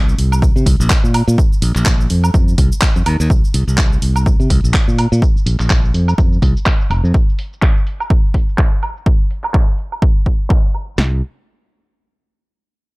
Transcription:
0.00 0.14 C2 loud
0.09 cabasa soft
0.18 0.50 C2 medium
0.18 open hi-hat medium
0.32 cabasa medium
0.32 high woodblock medium
0.42 kick loud
0.42 cabasa medium
0.56 0.64 C3 medium
0.56 cabasa soft
0.66 0.76 C2 loud
0.66 kick medium
0.66 open hi-hat loud
0.80 0.88 A#1 medium
0.80 cabasa medium
0.90 kick loud
0.90 clap loud
0.90 cabasa medium
1.04 1.21 A#2 medium
1.04 cabasa soft
1.14 open hi-hat medium
1.14 high woodblock medium
1.28 1.35 A#2 loud
1.28 cabasa medium
1.38 kick loud
1.38 cabasa medium
1.52 muted fingered electric bass stroke soft
1.52 cabasa soft
1.62 1.72 A#1 loud
1.62 open hi-hat loud
1.75 2.06 A#1 loud
1.75 clap soft
1.75 cabasa medium
1.86 kick loud
1.86 clap loud
1.86 cabasa medium
2.01 cabasa soft
2.10 2.29 F2 medium
2.10 open hi-hat medium
2.24 cabasa medium
2.24 high woodblock medium
2.34 2.53 F2 medium
2.34 kick loud
2.34 cabasa medium
2.48 cabasa soft
2.58 2.68 C2 loud
2.58 kick medium
2.58 open hi-hat loud
2.72 cabasa medium
2.81 kick loud
2.81 clap loud
2.81 cabasa medium
2.96 3.04 F2 loud
2.96 cabasa soft
3.06 3.16 D#2 loud
3.06 open hi-hat medium
3.06 high woodblock medium
3.20 3.28 D#2 loud
3.20 cabasa medium
3.30 kick loud
3.30 cabasa medium
3.45 cabasa soft
3.54 3.64 C2 loud
3.54 open hi-hat loud
3.67 3.98 C2 loud
3.67 cabasa medium
3.78 kick loud
3.78 clap loud
3.78 cabasa medium
3.93 cabasa soft
4.02 4.34 C2 medium
4.02 open hi-hat medium
4.16 cabasa medium
4.16 high woodblock medium
4.26 kick loud
4.26 cabasa medium
4.40 4.48 C3 medium
4.40 cabasa soft
4.50 4.60 C2 loud
4.50 kick medium
4.50 open hi-hat loud
4.64 4.72 A#1 medium
4.64 cabasa medium
4.74 kick loud
4.74 clap loud
4.74 cabasa medium
4.88 5.05 A#2 medium
4.88 cabasa soft
4.99 open hi-hat medium
4.99 high woodblock medium
5.12 5.20 A#2 loud
5.12 cabasa medium
5.22 kick loud
5.22 cabasa medium
5.36 muted fingered electric bass stroke soft
5.36 cabasa soft
5.46 5.56 A#1 loud
5.46 open hi-hat loud
5.60 5.90 A#1 loud
5.60 clap soft
5.60 cabasa medium
5.70 kick loud
5.70 clap loud
5.70 cabasa medium
5.85 cabasa soft
5.94 6.13 F2 medium
5.94 open hi-hat loud
6.08 cabasa medium
6.08 high woodblock medium
6.18 6.37 F2 medium
6.18 kick loud
6.18 cabasa medium
6.33 cabasa soft
6.42 6.52 C2 loud
6.42 kick medium
6.42 open hi-hat loud
6.57 cabasa medium
6.66 kick loud
6.66 clap loud
6.66 cabasa medium
6.81 cabasa soft
6.90 7.00 F1 loud
6.90 open hi-hat loud
6.90 high woodblock medium
7.04 7.12 F2 loud
7.04 cabasa medium
7.14 kick loud
7.14 cabasa medium
7.29 cabasa soft
7.39 open hi-hat loud
7.53 cabasa medium
7.62 kick loud
7.62 clap loud
7.62 cabasa medium
7.77 cabasa soft
7.87 open hi-hat loud
8.00 cabasa medium
8.00 high woodblock medium
8.10 kick loud
8.10 cabasa medium
8.25 cabasa soft
8.34 kick medium
8.34 open hi-hat loud
8.49 cabasa medium
8.58 kick loud
8.58 clap loud
8.73 cabasa soft
8.83 open hi-hat loud
8.83 high woodblock medium
8.97 cabasa medium
9.06 kick loud
9.06 cabasa medium
9.21 cabasa soft
9.31 open hi-hat loud
9.44 clap soft
9.44 cabasa medium
9.44 high woodblock medium
9.54 kick loud
9.54 clap loud
9.69 cabasa soft
9.78 open hi-hat loud
9.92 cabasa medium
9.92 high woodblock medium
10.02 kick loud
10.17 cabasa soft
10.26 kick medium
10.26 open hi-hat loud
10.41 cabasa medium
10.50 kick loud
10.50 clap loud
10.65 cabasa soft
10.74 open hi-hat medium
10.74 high woodblock medium
10.89 cabasa medium
10.98 11.21 C2 medium
10.98 snare loud

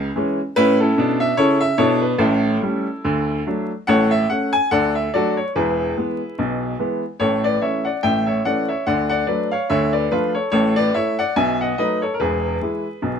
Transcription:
0.00 0.34 D#4 medium
0.00 0.14 G#4 medium
0.16 0.38 E3 medium
0.16 0.39 G#3 soft
0.16 0.39 C#4 medium
0.56 0.90 A2 medium
0.56 0.80 C#4 medium
0.56 0.79 E4 medium
0.56 0.77 B4 loud
0.80 1.19 C#4 medium
0.80 1.19 E4 medium
0.80 1.15 A4 medium
0.98 1.31 B2 medium
0.98 1.32 D4 medium
1.20 1.36 E5 medium
1.37 1.71 C#3 medium
1.37 1.61 E4 medium
1.37 1.61 A4 medium
1.37 1.58 C#5 loud
1.61 1.76 E5 medium
1.78 2.12 B2 medium
1.78 2.13 D4 medium
1.78 2.02 E4 medium
1.78 2.02 A4 medium
1.78 1.99 C#5 medium
2.02 2.18 B4 medium
2.18 2.55 A1 medium
2.18 2.55 A2 medium
2.18 2.62 C#4 medium
2.18 3.65 E4 medium
2.18 3.46 A4 medium
2.62 2.85 G3 soft
2.62 2.86 A3 soft
2.62 2.86 C#4 soft
3.04 3.40 D2 medium
3.04 3.40 D3 medium
3.47 3.69 F#3 soft
3.47 3.70 A3 soft
3.47 3.70 D4 soft
3.87 4.23 A1 medium
3.87 4.23 A2 medium
3.87 4.11 A4 medium
3.87 4.11 C#5 medium
3.87 4.08 F#5 loud
4.11 4.26 E5 medium
4.30 4.53 A3 soft
4.30 4.53 C#4 soft
4.30 4.50 F#5 medium
4.53 4.68 G#5 medium
4.71 5.07 D2 medium
4.71 5.06 D3 medium
4.71 4.94 A4 medium
4.71 4.94 D5 medium
4.71 4.92 F#5 loud
4.95 5.10 E5 medium
5.14 5.37 F#3 soft
5.14 5.37 A3 soft
5.14 5.37 D4 medium
5.14 5.36 F#4 medium
5.14 5.36 A4 medium
5.14 5.34 D5 medium
5.37 5.52 C#5 medium
5.56 5.90 E1 medium
5.56 5.90 E2 medium
5.56 6.76 E4 soft
5.56 6.76 G#4 soft
5.56 6.61 B4 medium
5.97 6.19 E3 soft
5.97 6.20 G#3 soft
5.97 6.20 B3 soft
6.39 6.73 B1 medium
6.39 6.73 B2 medium
6.79 7.02 E3 soft
6.79 7.02 G#3 soft
6.79 7.02 B3 soft
7.20 7.55 A1 medium
7.20 7.56 A2 medium
7.20 7.43 A4 medium
7.20 7.40 C#5 medium
7.44 7.61 B4 medium
7.44 7.59 D5 medium
7.62 7.85 E3 soft
7.62 7.85 A3 soft
7.62 7.85 C#4 soft
7.62 7.84 C#5 medium
7.62 7.82 E5 medium
7.85 8.02 D5 soft
7.85 8.00 F#5 medium
8.03 8.39 A1 medium
8.03 8.39 A2 medium
8.03 8.25 E5 medium
8.03 8.24 G5 medium
8.26 8.44 C#5 soft
8.26 8.41 E5 medium
8.45 8.68 E3 soft
8.45 8.68 A3 soft
8.45 8.69 C#4 soft
8.45 8.68 D5 medium
8.45 8.66 F#5 medium
8.68 8.86 C#5 soft
8.68 8.84 E5 medium
8.86 9.22 D2 medium
8.86 9.22 D3 medium
8.86 9.09 D5 medium
8.86 9.07 F#5 medium
9.09 9.25 D5 medium
9.09 9.25 F#5 medium
9.27 9.51 F#3 soft
9.27 9.51 A3 soft
9.27 9.51 D4 soft
9.27 9.51 B4 medium
9.27 9.48 D5 medium
9.51 9.69 C#5 medium
9.51 9.67 F5 medium
9.70 10.05 D2 medium
9.70 10.05 D3 medium
9.70 9.93 C#5 medium
9.70 9.90 E5 medium
9.93 10.10 B4 medium
9.93 10.08 D5 medium
10.12 10.35 F3 soft
10.12 10.35 A3 soft
10.12 10.35 D4 soft
10.12 10.34 F4 medium
10.12 10.32 B4 medium
10.35 10.51 A4 soft
10.35 10.50 C#5 medium
10.52 10.88 A1 medium
10.52 10.88 A2 medium
10.52 10.76 A4 medium
10.52 10.73 C#5 medium
10.76 10.94 B4 medium
10.76 10.92 D5 medium
10.94 11.18 A3 soft
10.94 11.18 E4 soft
10.94 11.18 C#5 medium
10.94 11.15 E5 medium
11.19 11.36 D5 medium
11.19 11.34 F#5 medium
11.36 11.72 B1 medium
11.36 11.72 B2 medium
11.36 11.59 E5 medium
11.36 11.57 G#5 medium
11.61 11.77 D#5 medium
11.61 11.76 F#5 medium
11.78 12.01 F#3 soft
11.78 12.02 A3 soft
11.78 12.02 D#4 soft
11.78 12.01 B4 medium
11.78 11.99 D#5 medium
12.02 12.13 A4 soft
12.02 12.12 C#5 medium
12.14 12.20 A#4 medium
12.20 12.55 E1 medium
12.20 12.56 E2 medium
12.20 13.20 G#4 medium
12.20 13.11 B4 medium
12.62 12.85 E3 soft
12.62 12.85 G#3 soft
12.62 12.85 E4 soft
13.02 13.20 B1 medium
13.02 13.20 B2 medium

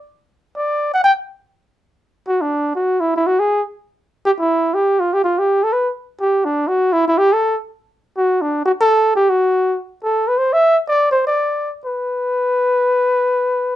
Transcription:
0.56 0.91 D5 medium
0.94 1.02 F#5 loud
1.04 1.12 G5 loud
2.28 2.43 F#4 medium
2.41 2.75 D4 medium
2.75 3.02 F#4 medium
3.00 3.14 E4 medium
3.16 3.28 E4 medium
3.27 3.41 F#4 medium
3.40 3.63 G#4 medium
4.26 4.31 G4 medium
4.39 4.76 E4 medium
4.74 5.02 G4 medium
5.00 5.15 F4 medium
5.14 5.22 G4 medium
5.24 5.40 F4 medium
5.39 5.65 G4 medium
5.64 5.74 A4 medium
5.73 5.91 B4 medium
6.21 6.46 G4 medium
6.45 6.69 D4 medium
6.68 6.94 F#4 medium
6.93 7.07 E4 loud
7.08 7.20 E4 medium
7.18 7.34 G4 loud
7.33 7.57 A4 medium
8.17 8.43 F#4 medium
8.42 8.65 D4 medium
8.65 8.72 F#4 medium
8.81 9.12 A4 loud
9.16 9.31 G4 medium
9.30 9.78 F#4 medium
10.03 10.29 A4 medium
10.28 10.39 B4 medium
10.38 10.54 C5 medium
10.53 10.77 E5 loud
10.88 11.10 D5 loud
11.11 11.24 C5 medium
11.27 11.72 D5 medium
11.86 13.76 B4 medium

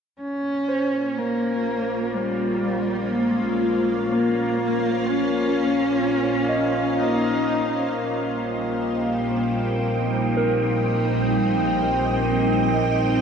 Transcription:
0.18 7.89 A#1 medium
0.18 13.21 A#3 medium
0.18 10.73 A#3 medium
0.18 1.20 C#4 medium
0.18 13.21 F4 medium
0.48 7.95 C#4 medium
0.58 10.18 F4 medium
0.68 2.60 C5 soft
1.19 2.18 A#3 medium
1.64 13.21 C5 medium
2.16 3.17 G3 medium
2.65 11.04 F5 medium
3.15 4.09 G#3 medium
4.12 5.08 A#3 medium
5.07 6.99 C#4 medium
6.49 8.38 D#5 soft
6.98 7.94 D#4 medium
7.94 13.21 A#1 medium
7.94 13.21 G3 medium
7.94 13.21 G5 medium
8.64 13.21 C4 medium
9.05 13.21 D#4 medium
10.37 12.28 A#4 medium
10.80 13.21 D#5 medium

